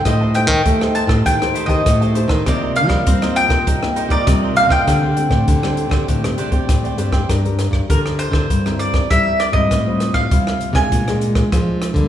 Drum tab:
HH |x-x-x-x-xxxxxxx-|x-x-xxxxx-xxx-x-|x-x-x-x-xxxxxxx-|xxx-x-x-x-x-x-x-|
SD |r--r-r-r-r--r--r|r--r-r-r-r--r--r|r--r-r-r-r--r--r|r-rr-r-r-r-rr-r-|
BD |o--oo--oo--oo--o|o--oo--oo--oo--o|o--oo--oo--oo--o|o--oo--oo--oo--o|

HH |x-x-x-xxxxxxx-xx|
SD |r-rr-r-r-r-rr-r-|
BD |o--oo--oo--oo--o|